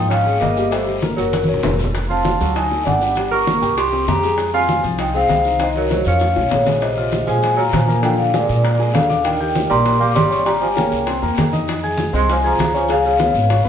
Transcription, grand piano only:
0.00 0.21 F3 medium
0.00 0.21 F4 medium
0.26 0.51 G#3 medium
0.26 0.52 G#4 medium
0.57 0.69 G3 medium
0.57 0.69 G4 medium
0.72 0.97 G3 medium
0.72 0.98 G4 medium
1.02 1.15 A#3 medium
1.02 1.15 A#4 medium
1.18 1.43 F#4 medium
1.18 1.43 F#5 medium
1.48 1.74 C#4 medium
1.48 1.74 C#5 medium
1.79 2.04 A3 medium
1.79 2.05 A4 medium
2.11 2.35 C4 medium
2.11 2.35 C5 medium
2.41 2.65 F#3 medium
2.41 2.66 F#4 medium
2.72 2.96 A3 medium
2.72 2.97 A4 medium
3.01 3.14 G3 medium
3.01 3.14 G4 medium
3.17 3.42 G3 medium
3.17 3.42 G4 medium
3.47 3.60 A#3 medium
3.47 3.60 A#4 medium
3.62 3.87 G4 medium
3.62 3.87 G5 medium
3.93 4.18 C4 medium
3.93 4.18 C5 medium
4.23 4.48 G#3 medium
4.23 4.48 G#4 medium
4.54 4.79 C4 medium
4.54 4.79 C5 medium
4.83 5.09 F3 medium
4.83 5.09 F4 medium
5.14 5.39 G#3 medium
5.14 5.40 G#4 medium
5.45 5.58 D#3 medium
5.45 5.58 D#4 medium
5.60 5.85 D#3 medium
5.60 5.85 D#4 medium
5.90 6.03 F#3 medium
5.90 6.03 F#4 medium
6.06 6.31 F4 medium
6.06 6.31 F5 medium
6.36 6.61 C#4 medium
6.36 6.61 C#5 medium
6.67 6.79 G#3 medium
6.67 6.79 G#4 medium
6.97 7.22 F4 medium
6.97 7.22 F5 medium
6.97 7.22 F6 medium
7.28 7.53 G#3 medium
7.28 7.53 G#4 medium
7.28 7.53 G#5 medium
7.58 7.83 F4 medium
7.58 7.83 F5 medium
7.58 7.83 F6 medium
7.88 8.01 A#3 medium
7.88 8.01 A#4 medium
7.88 8.01 A#5 medium
8.03 8.28 F3 medium
8.03 8.28 F4 medium
8.03 8.29 F5 medium
8.34 8.59 G#3 medium
8.34 8.59 G#4 medium
8.34 8.59 G#5 medium
8.64 8.76 A#3 medium
8.64 8.76 A#4 medium
8.64 8.77 A#5 medium
8.79 9.04 G#3 medium
8.79 9.05 G#4 medium
8.79 9.05 G#5 medium
9.09 9.34 D4 medium
9.09 9.35 D5 medium
9.09 9.35 D6 medium
9.40 9.65 G4 medium
9.40 9.65 G5 medium
9.40 9.65 G6 medium
9.70 9.95 A#3 medium
9.70 9.95 A#4 medium
9.70 9.96 A#5 medium
10.00 10.26 G4 medium
10.00 10.26 G5 medium
10.00 10.26 G6 medium
10.31 10.43 C#4 medium
10.31 10.44 C#5 medium
10.31 10.44 C#6 medium
10.46 10.71 G3 medium
10.46 10.71 G4 medium
10.46 10.72 G5 medium
10.77 11.02 A#3 medium
10.77 11.02 A#4 medium
10.77 11.02 A#5 medium
11.07 11.19 C4 medium
11.07 11.20 C5 medium
11.07 11.20 C6 medium
11.22 11.47 A#3 medium
11.22 11.47 A#4 medium
11.22 11.48 A#5 medium
11.52 11.77 D#4 medium
11.52 11.78 D#5 medium
11.52 11.78 D#6 medium
11.83 12.08 G#4 medium
11.83 12.08 G#5 medium
11.83 12.08 G#6 medium
12.13 12.38 C4 medium
12.13 12.38 C5 medium
12.13 12.39 C6 medium
12.44 12.69 G#4 medium
12.44 12.69 G#5 medium
12.44 12.69 G#6 medium
12.74 12.87 C#4 medium
12.74 12.87 C#5 medium
12.74 12.87 C#6 medium
12.89 13.14 G#3 medium
12.89 13.14 G#4 medium
12.89 13.14 G#5 medium
13.19 13.44 B3 medium
13.19 13.44 B4 medium
13.19 13.44 B5 medium
13.49 13.62 C#4 medium
13.49 13.62 C#5 medium
13.49 13.62 C#6 medium
13.65 13.69 B3 medium
13.65 13.69 B4 medium
13.65 13.69 B5 medium

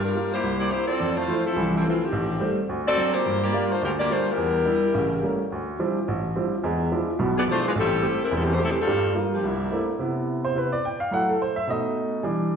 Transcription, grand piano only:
0.00 0.11 G2 medium
0.15 0.33 G3 soft
0.15 0.33 A#3 soft
0.15 0.33 F4 soft
0.43 0.67 C2 medium
0.72 0.90 A#3 soft
0.72 0.90 C4 soft
0.72 0.90 E4 soft
1.00 1.24 F2 medium
1.28 1.46 F3 soft
1.28 1.46 A3 soft
1.28 1.46 E4 medium
1.56 1.80 C2 medium
1.56 1.80 E3 medium
1.84 2.02 F3 soft
1.84 2.02 A3 soft
1.84 2.02 E4 soft
2.12 2.36 A1 medium
2.40 2.58 G3 medium
2.40 2.58 A3 soft
2.40 2.59 C4 medium
2.69 2.93 D2 medium
2.97 3.15 F#3 soft
2.97 3.15 C4 soft
2.97 3.15 D4 soft
3.26 3.49 G2 medium
3.53 3.71 G3 soft
3.53 3.71 A#3 soft
3.53 3.71 F4 medium
3.82 4.06 D2 medium
3.82 4.06 D3 medium
4.10 4.28 G3 soft
4.10 4.28 A#3 soft
4.10 4.28 F4 soft
4.37 4.62 E2 medium
4.66 4.84 G3 medium
4.66 4.84 D4 soft
4.66 4.84 E4 medium
4.94 5.18 A1 medium
4.94 5.18 C#3 medium
5.23 5.40 G3 soft
5.23 5.40 A3 soft
5.23 5.41 A#3 soft
5.23 5.41 C#4 soft
5.52 5.75 D2 medium
5.79 5.97 F3 soft
5.79 5.97 G3 soft
5.79 5.97 C4 soft
5.79 5.97 D4 soft
5.79 5.97 E4 medium
6.08 6.31 A1 medium
6.36 6.53 F3 soft
6.36 6.53 G3 soft
6.36 6.53 C4 soft
6.36 6.53 D4 soft
6.36 6.53 E4 soft
6.64 6.87 E2 medium
6.64 6.88 G#3 medium
6.92 7.09 F3 soft
6.92 7.09 G#3 soft
6.92 7.09 D4 soft
6.92 7.09 E4 medium
7.19 7.43 B1 medium
7.19 7.43 B2 medium
7.47 7.65 F3 soft
7.47 7.65 G#3 soft
7.47 7.65 D4 soft
7.47 7.65 E4 medium
7.75 7.99 A1 medium
8.02 8.20 A3 medium
8.02 8.21 C4 medium
8.02 8.21 G4 medium
8.31 8.55 E1 medium
8.31 8.55 E2 medium
8.59 8.77 A3 soft
8.59 8.77 C4 soft
8.59 8.77 G4 soft
8.87 9.12 G2 medium
8.87 9.11 G3 medium
9.15 9.33 G3 soft
9.15 9.33 A#3 soft
9.15 9.34 F4 medium
9.44 9.68 C2 medium
9.72 9.89 A3 soft
9.72 9.90 A#3 soft
9.72 9.89 C4 soft
9.72 9.90 D4 soft
9.72 9.90 E4 soft
9.99 10.54 C3 soft
9.99 10.55 B3 soft
9.99 10.55 E4 medium
10.45 10.56 C5 medium
10.55 10.70 C3 soft
10.55 10.71 B3 soft
10.55 10.71 E4 soft
10.55 10.73 B4 medium
10.72 10.84 D5 medium
10.85 11.01 G5 medium
11.00 11.12 F5 medium
11.11 11.32 F#3 soft
11.11 11.32 A3 soft
11.11 11.32 E4 medium
11.11 11.29 F#5 medium
11.29 11.40 A4 medium
11.42 11.57 C5 medium
11.56 11.68 E5 medium
11.67 12.21 B2 soft
11.67 12.21 A3 soft
11.67 12.22 D#4 medium
11.67 12.22 D#5 medium
12.23 12.56 E3 medium
12.23 12.56 G3 soft
12.23 12.56 D4 medium

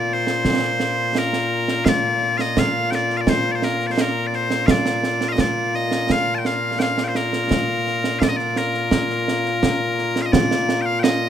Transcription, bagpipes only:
0.00 11.29 A#2 medium
0.00 11.29 A#3 medium
0.00 11.29 F4 medium
0.00 0.13 D5 medium
0.13 1.18 C5 medium
1.18 1.85 A#4 medium
1.85 2.38 D5 medium
1.85 1.89 F5 medium
2.38 2.59 D#5 medium
2.38 2.41 F5 medium
2.59 2.91 F5 medium
2.91 2.95 G5 medium
2.95 3.17 D5 medium
3.17 3.29 D5 medium
3.17 3.21 F5 medium
3.29 3.51 C5 loud
3.51 3.64 C5 medium
3.51 3.55 D5 medium
3.64 3.87 A#4 medium
3.87 3.91 D5 medium
3.91 4.01 C5 medium
4.01 4.27 A#4 medium
4.27 4.35 D5 medium
4.35 4.67 C5 medium
4.67 4.71 F5 medium
4.71 5.29 D5 medium
5.29 5.41 D#5 medium
5.29 5.32 F5 medium
5.41 5.76 D5 medium
5.76 6.11 D#5 medium
6.11 6.35 F5 loud
6.35 6.46 G5 medium
6.35 6.38 A5 medium
6.46 6.79 F5 medium
6.79 7.04 F5 medium
6.79 6.82 G5 medium
7.04 7.08 G5 medium
7.08 7.16 C5 medium
7.16 8.19 A#4 medium
8.19 8.29 D5 medium
8.19 8.23 F5 medium
8.29 8.37 D#5 medium
8.37 8.57 D5 medium
8.57 10.22 A#4 medium
10.22 10.26 F5 medium
10.26 10.32 D#5 medium
10.32 10.82 D5 loud
10.82 10.86 G5 medium
10.86 11.00 F5 loud
11.00 11.29 D#5 medium
11.00 11.03 G5 medium

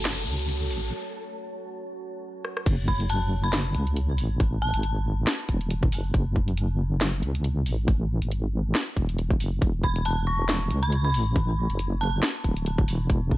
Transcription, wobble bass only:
0.00 0.29 F#1 loud
0.27 0.72 C#2 medium
0.70 0.92 A1 medium
2.66 3.76 F#1 loud
3.75 4.20 C#2 medium
4.18 4.73 A1 medium
4.74 5.26 G#1 medium
5.49 5.91 E1 medium
5.92 6.13 F#1 medium
6.14 7.24 F#1 loud
7.23 7.68 C#2 medium
7.66 8.20 A1 medium
8.22 8.74 G#1 medium
8.96 9.39 E1 medium
9.40 9.60 F#1 medium
9.62 10.72 E1 loud
10.70 11.15 C#2 medium
11.14 11.68 A1 medium
11.69 12.21 F#1 medium
12.44 12.87 D1 medium
12.88 13.08 E1 medium
13.09 13.38 E1 loud

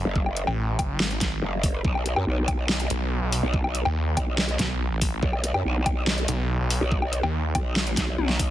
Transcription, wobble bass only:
0.05 0.46 F#1 loud
1.42 1.83 F#1 loud
1.85 2.15 B1 medium
2.16 2.25 F#2 medium
2.27 2.88 B1 loud
3.43 3.84 B1 loud
4.17 4.57 B1 loud
5.23 5.53 B1 medium
5.54 5.63 F#2 loud
5.65 6.27 B1 loud
6.81 7.22 B1 loud
7.55 7.95 B1 loud
7.97 8.17 B1 loud
8.18 8.50 B1 loud

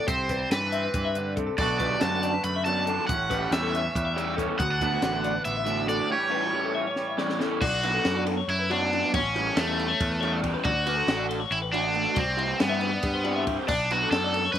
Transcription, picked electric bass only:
0.08 0.44 C2 medium
0.50 0.87 G2 medium
0.94 1.48 G2 loud
1.58 1.94 B1 loud
2.02 2.38 F#2 medium
2.44 2.98 F#2 loud
3.10 3.45 A1 medium
3.51 3.87 E2 loud
3.96 4.49 E2 loud
4.59 4.95 D2 loud
5.02 5.38 A1 medium
5.46 6.00 A1 loud
7.62 7.98 B1 loud
8.06 8.41 F#2 loud
8.48 9.02 F#2 loud
9.14 9.50 A1 loud
9.56 9.93 E2 medium
10.00 10.54 E2 loud
10.65 11.01 D2 loud
11.08 11.44 A1 loud
11.51 12.05 A1 loud
12.17 12.53 C2 loud
12.61 12.97 G2 loud
13.04 13.58 G2 loud
13.68 14.04 B1 medium
14.11 14.47 F#2 medium
14.54 14.59 F#2 loud

